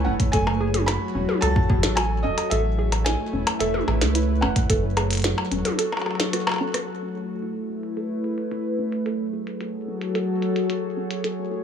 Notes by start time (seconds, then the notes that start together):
Already playing: A3 E4 B4 C#5
0.04 E1 C#4 F#5
0.20 kick, closed hi-hat
0.32 F#1 F#3 A4 G#5, kick, closed hi-hat
0.47 F#4, percussion blips
0.61 G#4
0.74 closed hi-hat, high tom
0.86 F#4 B5, snare, closed hi-hat, percussion blips
1.03 A4
1.15 E1 C#4
1.29 high tom
1.41 C#2 A4 A5, closed hi-hat, percussion blips
1.56 kick
1.70 F#1 G#4, kick
1.83 A1, snare, closed hi-hat
1.95 F#4 G#5, closed hi-hat, percussion blips
2.23 E1 C#4 D#5
2.38 closed hi-hat, percussion blips
2.50 A1 A3 A4 E5, closed hi-hat
2.58 E4
2.79 G#4
2.92 closed hi-hat, percussion blips
3.04 E4 G#5, snare, closed hi-hat
3.31 E1 C#4 B4
3.47 closed hi-hat, percussion blips
3.59 E1 A4 E5, closed hi-hat
3.74 high tom
3.88 A1 G#4, percussion blips
4.01 C#2, snare, closed hi-hat
4.15 E4, closed hi-hat
4.41 E1 C#4 F#5, percussion blips
4.56 kick, closed hi-hat
4.70 F#1 F#3 A4, kick, closed hi-hat
4.84 F#4
4.97 G#4, closed hi-hat, percussion blips
5.11 closed hi-hat
5.13 A4, closed hi-hat
5.20 closed hi-hat
5.22 snare, closed hi-hat
5.24 F#4, closed hi-hat
5.38 percussion blips
5.51 E1 C#4, closed hi-hat
5.65 closed hi-hat, high tom
5.79 A4, closed hi-hat
5.92 percussion blips
5.97 percussion blips
6.01 percussion blips
6.06 G#4, percussion blips
6.11 percussion blips
6.15 percussion blips
6.20 snare, closed hi-hat
6.33 F#4, cross-stick, closed hi-hat
6.47 cross-stick, percussion blips
6.49 percussion blips
6.51 percussion blips
6.54 percussion blips
6.56 percussion blips
6.58 C#4, percussion blips
6.74 cross-stick, closed hi-hat
6.88 A3 A4
6.95 closed hi-hat
7.06 E4
7.15 G#4
7.29 closed hi-hat
7.42 E4 B4, closed hi-hat
7.70 C#4
7.83 closed hi-hat
7.97 A4, closed hi-hat
8.24 G#4, closed hi-hat
8.38 closed hi-hat
8.51 E4, closed hi-hat
8.79 C#4
8.92 closed hi-hat
9.06 F#3 A4, closed hi-hat
9.19 G#4
9.23 A4 C#5
9.31 F#4 G#4
9.47 closed hi-hat
9.61 F#4, closed hi-hat
9.88 C#4
10.01 closed hi-hat
10.15 A4, closed hi-hat
10.42 G#4, closed hi-hat
10.56 closed hi-hat
10.70 F#4, closed hi-hat
10.97 C#4
11.11 closed hi-hat
11.24 A3 A4, closed hi-hat
11.43 E4
11.51 G#4